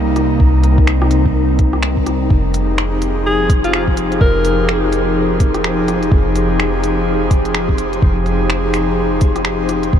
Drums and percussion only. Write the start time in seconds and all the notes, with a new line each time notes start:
0.16 cross-stick, closed hi-hat
0.40 kick
0.64 closed hi-hat
0.78 kick
0.88 finger snap, closed hi-hat
1.02 cross-stick
1.11 closed hi-hat
1.26 kick
1.59 kick, closed hi-hat
1.73 cross-stick
1.83 finger snap
1.97 kick
2.07 cross-stick, closed hi-hat
2.30 kick
2.54 closed hi-hat, cabasa
2.78 finger snap
3.02 closed hi-hat, cabasa
3.49 kick, closed hi-hat, cabasa
3.64 closed hi-hat
3.73 finger snap
3.88 kick
3.97 closed hi-hat, cabasa
4.12 closed hi-hat
4.21 kick
4.45 closed hi-hat, cabasa
4.69 finger snap
4.93 closed hi-hat, cabasa
5.40 kick, closed hi-hat, cabasa
5.55 cross-stick, closed hi-hat
5.64 finger snap
5.88 cross-stick, closed hi-hat, cabasa
6.03 closed hi-hat
6.12 kick
6.36 closed hi-hat, cabasa
6.60 finger snap
6.84 closed hi-hat, cabasa
7.31 kick, closed hi-hat, cabasa
7.45 closed hi-hat
7.54 finger snap
7.69 kick
7.78 closed hi-hat, cabasa
7.93 closed hi-hat
8.02 kick
8.26 closed hi-hat, cabasa
8.50 finger snap, closed hi-hat
8.74 finger snap, closed hi-hat, cabasa
9.21 kick, closed hi-hat, cabasa
9.36 cross-stick, closed hi-hat
9.45 finger snap
9.69 cross-stick, closed hi-hat, cabasa
9.83 closed hi-hat
9.93 kick